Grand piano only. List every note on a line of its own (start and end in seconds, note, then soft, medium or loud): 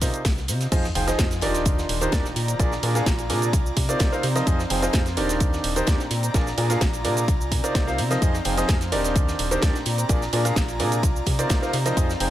0.02 0.19 C3 medium
0.02 0.19 D#4 medium
0.02 0.19 F4 medium
0.02 0.19 A#4 medium
0.02 0.19 C5 medium
0.02 0.19 D#5 medium
0.72 0.83 F3 medium
0.72 0.83 D#4 medium
0.72 0.83 F4 medium
0.72 0.83 G#4 medium
0.72 0.83 C5 medium
0.72 0.83 D#5 loud
0.95 1.06 F3 medium
0.95 1.06 D#4 medium
0.95 1.06 F4 medium
0.95 1.06 G#4 medium
0.95 1.06 C5 medium
0.95 1.06 G5 medium
1.07 1.25 F3 medium
1.07 1.25 D#4 medium
1.07 1.25 F4 medium
1.07 1.25 G#4 medium
1.07 1.25 C5 medium
1.07 1.25 D#5 loud
1.42 1.98 D#3 medium
1.42 1.98 D4 medium
1.42 1.98 D#4 medium
1.42 1.98 G4 medium
1.42 1.98 A#4 medium
1.42 1.98 D5 loud
2.01 2.11 D#3 medium
2.01 2.11 D4 medium
2.01 2.11 D#4 medium
2.01 2.11 G4 medium
2.01 2.11 A#4 medium
2.01 2.11 C5 loud
2.13 2.24 D4 medium
2.13 2.24 D#4 medium
2.59 2.71 A#2 medium
2.59 2.71 D4 medium
2.59 2.71 F4 medium
2.59 2.71 G#4 medium
2.59 2.71 A#4 medium
2.59 2.71 D5 loud
2.83 2.93 A#2 medium
2.83 2.93 D4 medium
2.83 2.93 F4 medium
2.83 2.93 G#4 medium
2.83 2.93 A#4 medium
2.83 2.93 D5 medium
2.95 3.06 A#2 medium
2.95 3.06 D4 medium
2.95 3.06 F4 medium
2.95 3.06 G#4 medium
2.95 3.06 A#4 medium
2.95 3.06 F5 medium
3.30 3.48 C3 medium
3.30 3.48 D4 medium
3.30 3.48 F4 medium
3.30 3.48 G#4 medium
3.30 3.48 A#4 medium
3.30 3.48 D5 medium
3.89 4.09 C3 medium
3.89 4.09 D#4 medium
3.89 4.09 F4 medium
3.89 4.09 A#4 medium
3.89 4.09 C5 medium
3.89 4.09 D5 loud
4.12 4.23 C3 medium
4.12 4.23 D#4 medium
4.12 4.23 F4 medium
4.12 4.23 A#4 medium
4.12 4.23 C5 medium
4.12 4.23 F5 loud
4.36 4.45 F3 loud
4.36 4.45 D#4 medium
4.36 4.45 F4 medium
4.36 4.45 A#4 medium
4.36 4.45 C5 medium
4.36 4.45 D#5 loud
4.47 4.58 F3 medium
4.47 4.58 D#4 medium
4.47 4.58 F4 medium
4.47 4.58 G#4 medium
4.47 4.58 C5 medium
4.47 4.58 D#5 loud
4.70 4.81 F3 medium
4.70 4.81 D#4 medium
4.70 4.81 F4 medium
4.70 4.81 G#4 medium
4.70 4.81 C5 medium
4.70 4.81 G5 medium
4.82 5.00 F3 medium
4.82 5.00 D#4 medium
4.82 5.00 F4 medium
4.82 5.00 G#4 medium
4.82 5.00 C5 medium
4.82 5.00 D#5 loud
5.17 5.73 D#3 medium
5.17 5.73 D4 medium
5.17 5.73 D#4 medium
5.17 5.73 G4 medium
5.17 5.73 A#4 medium
5.17 5.73 D5 loud
5.76 5.86 D#3 medium
5.76 5.86 D4 medium
5.76 5.86 D#4 medium
5.76 5.86 G4 medium
5.76 5.86 A#4 medium
5.76 5.86 C5 loud
5.87 5.99 A#2 medium
5.87 5.99 D4 medium
5.87 5.99 D#4 medium
5.87 5.99 G4 medium
5.87 5.99 A#4 medium
5.87 5.99 D5 loud
6.34 6.46 A#2 medium
6.34 6.46 D4 medium
6.34 6.46 F4 medium
6.34 6.46 G#4 medium
6.34 6.46 A#4 medium
6.34 6.46 D5 loud
6.58 6.68 A#2 medium
6.58 6.68 D4 medium
6.58 6.68 F4 medium
6.58 6.68 G#4 medium
6.58 6.68 A#4 medium
6.58 6.68 D5 medium
6.70 6.81 A#2 medium
6.70 6.81 D4 medium
6.70 6.81 F4 medium
6.70 6.81 G#4 medium
6.70 6.81 A#4 medium
6.70 6.81 F5 loud
7.05 7.22 C3 medium
7.05 7.22 D4 medium
7.05 7.22 F4 medium
7.05 7.22 G#4 medium
7.05 7.22 A#4 medium
7.05 7.22 D5 medium
7.64 7.84 C3 loud
7.64 7.84 D#4 medium
7.64 7.84 F4 medium
7.64 7.84 A#4 medium
7.64 7.84 C5 medium
7.64 7.84 D5 loud
7.87 7.98 C3 medium
7.87 7.98 D#4 medium
7.87 7.98 F4 medium
7.87 7.98 A#4 medium
7.87 7.98 C5 medium
7.87 7.98 F5 loud
8.11 8.20 F3 loud
8.11 8.20 D#4 medium
8.11 8.20 F4 medium
8.11 8.20 A#4 medium
8.11 8.20 C5 medium
8.11 8.20 D#5 loud
8.22 8.33 F3 loud
8.22 8.33 D#4 medium
8.22 8.33 F4 medium
8.22 8.33 G#4 medium
8.22 8.33 C5 medium
8.22 8.33 D#5 loud
8.45 8.56 F3 medium
8.45 8.56 D#4 medium
8.45 8.56 F4 medium
8.45 8.56 G#4 medium
8.45 8.56 C5 medium
8.45 8.56 G5 medium
8.57 8.75 F3 medium
8.57 8.75 D#4 medium
8.57 8.75 F4 medium
8.57 8.75 G#4 medium
8.57 8.75 C5 medium
8.57 8.75 D#5 loud
8.92 9.48 D#3 medium
8.92 9.48 D4 medium
8.92 9.48 D#4 medium
8.92 9.48 G4 medium
8.92 9.48 A#4 medium
8.92 9.48 D5 loud
9.51 9.61 D#3 medium
9.51 9.61 D4 medium
9.51 9.61 D#4 medium
9.51 9.61 G4 medium
9.51 9.61 A#4 medium
9.51 9.61 C5 loud
9.63 9.74 A#2 medium
9.63 9.74 D4 medium
9.63 9.74 D#4 medium
9.63 9.74 G4 medium
9.63 9.74 A#4 medium
9.63 9.74 D5 loud
10.09 10.21 A#2 medium
10.09 10.21 D4 medium
10.09 10.21 F4 medium
10.09 10.21 G#4 medium
10.09 10.21 A#4 medium
10.09 10.21 D5 loud
10.33 10.43 A#2 medium
10.33 10.43 D4 medium
10.33 10.43 F4 medium
10.33 10.43 G#4 medium
10.33 10.43 A#4 medium
10.33 10.43 D5 medium
10.45 10.56 A#2 medium
10.45 10.56 D4 medium
10.45 10.56 F4 medium
10.45 10.56 G#4 medium
10.45 10.56 A#4 medium
10.45 10.56 F5 loud
10.80 10.98 C3 medium
10.80 10.98 D4 medium
10.80 10.98 F4 medium
10.80 10.98 G#4 medium
10.80 10.98 A#4 medium
10.80 10.98 D5 medium
11.39 11.59 C3 loud
11.39 11.59 D#4 medium
11.39 11.59 F4 medium
11.39 11.59 A#4 medium
11.39 11.59 C5 medium
11.39 11.59 D5 loud
11.62 11.73 C3 loud
11.62 11.73 D#4 medium
11.62 11.73 F4 medium
11.62 11.73 A#4 medium
11.62 11.73 C5 medium
11.62 11.73 F5 loud
11.86 11.95 F3 loud
11.86 11.95 D#4 medium
11.86 11.95 F4 medium
11.86 11.95 A#4 medium
11.86 11.95 C5 medium
11.86 11.95 D#5 loud
11.97 12.08 F3 medium
11.97 12.08 D#4 medium
11.97 12.08 F4 medium
11.97 12.08 G#4 medium
11.97 12.08 C5 medium
11.97 12.08 D#5 loud
12.20 12.30 F3 medium
12.20 12.30 D#4 medium
12.20 12.30 F4 medium
12.20 12.30 G#4 medium
12.20 12.30 C5 medium
12.20 12.30 G5 medium